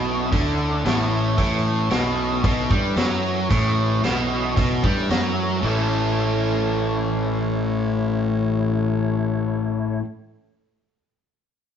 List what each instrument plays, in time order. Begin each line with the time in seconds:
Already playing: picked electric bass B1, overdriven electric guitar B2, tonewheel organ A3 C#4 E4
0.32 picked electric bass D2, overdriven electric guitar D3, kick, open hi-hat
0.85 picked electric bass A1, overdriven electric guitar A2, snare, open hi-hat
1.38 picked electric bass A1, overdriven electric guitar A2, tonewheel organ E3 A3 C#4, kick, open hi-hat
1.90 picked electric bass B1, overdriven electric guitar B2, snare, open hi-hat
2.44 picked electric bass B1, overdriven electric guitar B2, kick, open hi-hat
2.70 picked electric bass G2, overdriven electric guitar G3, kick
2.96 picked electric bass F#2, overdriven electric guitar F#3, snare, open hi-hat
3.50 picked electric bass A1, overdriven electric guitar A2, kick, open hi-hat
4.03 picked electric bass B1, overdriven electric guitar B2, snare, open hi-hat
4.56 picked electric bass B1, overdriven electric guitar B2, kick, open hi-hat
4.84 picked electric bass G2, overdriven electric guitar G3, kick
5.10 picked electric bass F#2, overdriven electric guitar F#3, snare, open hi-hat
5.62 picked electric bass A1, overdriven electric guitar A2 E3 A3 C#4 E4 A4, tonewheel organ A3 E4 C#5